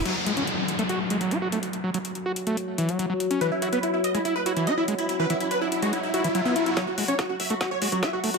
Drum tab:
CC |x---------------|----------------|----------------|----------------|
HH |x-xxx-xxx-xxx-xx|x-xxx-xxx-xxx-xx|x-xxx-xxx-xxx-xx|x-xxx-xxx-xxx-xx|
SD |----------------|----------------|----------------|----------------|
BD |----------------|----------------|----------------|----------------|

CC |----------------|
HH |x-oxx-oxx-oxx-ox|
SD |o---o---o---o---|
BD |o---o---o---o---|